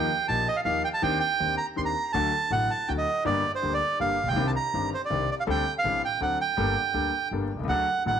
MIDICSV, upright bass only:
0, 0, Header, 1, 2, 480
1, 0, Start_track
1, 0, Key_signature, -2, "minor"
1, 0, Tempo, 369458
1, 1341, Time_signature, 3, 2, 24, 8
1, 10651, End_track
2, 0, Start_track
2, 0, Title_t, "Upright bass"
2, 0, Program_c, 0, 32
2, 372, Note_on_c, 0, 34, 54
2, 580, Note_off_c, 0, 34, 0
2, 844, Note_on_c, 0, 39, 60
2, 1054, Note_off_c, 0, 39, 0
2, 1335, Note_on_c, 0, 39, 81
2, 1539, Note_off_c, 0, 39, 0
2, 1823, Note_on_c, 0, 39, 51
2, 2024, Note_off_c, 0, 39, 0
2, 2313, Note_on_c, 0, 39, 54
2, 2510, Note_off_c, 0, 39, 0
2, 2782, Note_on_c, 0, 38, 72
2, 2983, Note_off_c, 0, 38, 0
2, 3253, Note_on_c, 0, 33, 55
2, 3460, Note_off_c, 0, 33, 0
2, 3756, Note_on_c, 0, 38, 52
2, 3955, Note_off_c, 0, 38, 0
2, 4230, Note_on_c, 0, 31, 74
2, 4434, Note_off_c, 0, 31, 0
2, 4720, Note_on_c, 0, 38, 52
2, 4919, Note_off_c, 0, 38, 0
2, 5197, Note_on_c, 0, 31, 56
2, 5397, Note_off_c, 0, 31, 0
2, 5506, Note_on_c, 0, 33, 46
2, 5560, Note_off_c, 0, 33, 0
2, 5565, Note_on_c, 0, 34, 53
2, 5620, Note_off_c, 0, 34, 0
2, 5626, Note_on_c, 0, 35, 63
2, 5670, Note_off_c, 0, 35, 0
2, 5678, Note_on_c, 0, 36, 85
2, 5877, Note_off_c, 0, 36, 0
2, 6154, Note_on_c, 0, 31, 52
2, 6355, Note_off_c, 0, 31, 0
2, 6636, Note_on_c, 0, 36, 59
2, 6833, Note_off_c, 0, 36, 0
2, 7107, Note_on_c, 0, 38, 80
2, 7307, Note_off_c, 0, 38, 0
2, 7590, Note_on_c, 0, 33, 55
2, 7786, Note_off_c, 0, 33, 0
2, 8060, Note_on_c, 0, 38, 54
2, 8262, Note_off_c, 0, 38, 0
2, 8544, Note_on_c, 0, 31, 75
2, 8744, Note_off_c, 0, 31, 0
2, 9015, Note_on_c, 0, 38, 56
2, 9220, Note_off_c, 0, 38, 0
2, 9501, Note_on_c, 0, 31, 54
2, 9705, Note_off_c, 0, 31, 0
2, 9800, Note_on_c, 0, 35, 42
2, 9854, Note_off_c, 0, 35, 0
2, 9861, Note_on_c, 0, 36, 51
2, 9908, Note_off_c, 0, 36, 0
2, 9916, Note_on_c, 0, 37, 59
2, 9967, Note_off_c, 0, 37, 0
2, 9974, Note_on_c, 0, 38, 73
2, 10184, Note_off_c, 0, 38, 0
2, 10462, Note_on_c, 0, 33, 52
2, 10651, Note_off_c, 0, 33, 0
2, 10651, End_track
0, 0, End_of_file